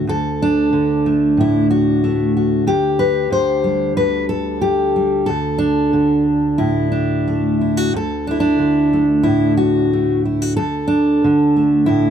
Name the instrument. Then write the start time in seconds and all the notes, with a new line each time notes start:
steel-string acoustic guitar
Already playing: D3
0.07 D2 A4
0.42 D4
0.73 D3
1.06 A3
1.37 A2 E4
1.71 F#4
2.04 A3
2.37 F#4
2.67 D2 G4
2.99 B4
3.30 D3 C5
3.64 G3
3.97 D2 B4
4.29 A4
4.61 G4
4.96 G3
5.26 D2 A4
5.58 D4
5.93 D3
6.58 A2 E4
6.92 D4
7.28 A3
7.61 E4
7.77 F#4
7.93 D2 A4
8.27 D4 E4
8.40 D4
8.59 D3
8.93 A3
9.23 A2 E4
9.57 F#4
9.93 A3
10.25 E4
10.42 F#4
10.56 D2 A4
10.88 D4
11.24 D3
11.56 A3
11.86 A2 E4